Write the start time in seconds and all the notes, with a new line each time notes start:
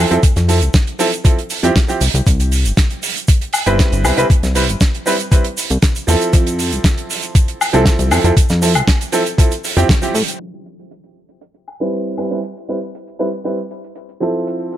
0.11 F2 F3 C4 E4 A4, closed hi-hat, shaker
0.23 kick, closed hi-hat, shaker
0.36 F2, snare, closed hi-hat, shaker
0.48 F3 C4 E4 A4, open hi-hat, shaker
0.61 C2, closed hi-hat, shaker
0.74 kick, snare, closed hi-hat, shaker
0.87 closed hi-hat
0.99 F3 C4 E4 A4, open hi-hat, shaker
1.12 closed hi-hat, shaker
1.24 F3 C4 E4 A4, kick, closed hi-hat, shaker
1.39 closed hi-hat
1.50 open hi-hat, shaker
1.63 F2 F3 C4 E4 G4, closed hi-hat, shaker
1.76 kick, snare, closed hi-hat, shaker
1.88 F3 C4 E4 G4, closed hi-hat, shaker
2.01 C2, open hi-hat, shaker
2.14 C2, closed hi-hat, shaker
2.27 C2, kick, closed hi-hat, shaker
2.40 closed hi-hat, shaker
2.52 open hi-hat, shaker
2.65 G1, closed hi-hat, shaker
2.77 kick, snare, closed hi-hat, shaker
2.90 closed hi-hat
3.03 open hi-hat, shaker
3.16 closed hi-hat, shaker
3.28 kick, closed hi-hat, shaker
3.41 closed hi-hat
3.53 open hi-hat, high woodblock, shaker
3.66 G1 G3 C4 E4 B4, closed hi-hat, shaker
3.79 kick, snare, closed hi-hat, shaker
3.92 G1, closed hi-hat, shaker
4.04 C2 G3 C4 E4 B4, open hi-hat, high woodblock, shaker
4.17 C2 G3 C4 E4 B4, closed hi-hat, shaker
4.30 C2, kick, closed hi-hat, shaker
4.43 C2, snare, closed hi-hat, shaker
4.55 G3 C4 E4 B4, open hi-hat, shaker
4.69 G1, closed hi-hat, shaker
4.81 kick, snare, closed hi-hat, shaker
4.94 closed hi-hat
5.06 G3 C4 E4 B4, open hi-hat, shaker
5.19 closed hi-hat, shaker
5.31 G3 C4 E4 B4, kick, closed hi-hat, shaker
5.44 closed hi-hat
5.57 open hi-hat, shaker
5.70 C2, closed hi-hat, shaker
5.82 kick, snare, closed hi-hat, shaker
5.96 closed hi-hat, shaker
6.07 E2 F3 C4 E4 A4, open hi-hat, shaker
6.21 closed hi-hat, shaker
6.33 F2, kick, closed hi-hat, shaker
6.47 closed hi-hat, shaker
6.59 open hi-hat, shaker
6.72 C2, closed hi-hat, shaker
6.84 kick, snare, closed hi-hat, shaker
6.98 closed hi-hat
7.10 open hi-hat, shaker
7.22 closed hi-hat, shaker
7.35 kick, closed hi-hat, shaker
7.48 closed hi-hat
7.61 open hi-hat, high woodblock, shaker
7.73 C2 F3 C4 E4 A4, closed hi-hat, shaker
7.86 kick, snare, closed hi-hat, shaker
7.99 C2, closed hi-hat, shaker
8.11 F2 F3 C4 E4 A4, open hi-hat, high woodblock, shaker
8.24 F2 F3 C4 E4 A4, closed hi-hat, shaker
8.37 F2, kick, closed hi-hat, shaker
8.49 F2, snare, closed hi-hat, shaker
8.62 F3 C4 E4 A4, open hi-hat, shaker
8.75 C2, closed hi-hat, high woodblock, shaker
8.88 kick, snare, closed hi-hat, shaker
9.01 closed hi-hat, shaker
9.12 F3 C4 E4 A4, open hi-hat, shaker
9.26 closed hi-hat, shaker
9.38 F3 C4 E4 A4, kick, closed hi-hat, shaker
9.51 closed hi-hat, shaker
9.64 open hi-hat, shaker
9.76 F2 F3 C4 E4 G4, closed hi-hat, shaker
9.89 kick, snare, closed hi-hat, shaker
10.02 F3 C4 E4 G4, closed hi-hat, shaker
10.14 A2, open hi-hat, shaker
10.28 closed hi-hat, shaker
10.40 closed hi-hat
10.54 closed hi-hat
10.66 closed hi-hat
10.79 closed hi-hat
10.91 closed hi-hat
11.04 closed hi-hat
11.29 closed hi-hat
11.41 closed hi-hat
11.54 closed hi-hat
11.68 closed hi-hat, high woodblock
11.80 G3 C4 E4 B4, closed hi-hat
11.93 closed hi-hat
12.06 closed hi-hat
12.18 G3 C4 E4 B4, closed hi-hat, high woodblock
12.31 G3 C4 E4 B4, closed hi-hat
12.43 closed hi-hat
12.57 closed hi-hat
12.68 G3 C4 E4 B4, closed hi-hat
12.82 closed hi-hat
12.95 closed hi-hat
13.08 closed hi-hat
13.19 G3 C4 E4 B4
13.33 closed hi-hat
13.44 G3 C4 E4 B4, closed hi-hat
13.59 closed hi-hat
13.71 closed hi-hat
13.84 closed hi-hat
13.95 closed hi-hat
14.09 closed hi-hat
14.20 F3 C4 E4 A4, closed hi-hat
14.35 closed hi-hat
14.47 closed hi-hat
14.60 closed hi-hat
14.72 closed hi-hat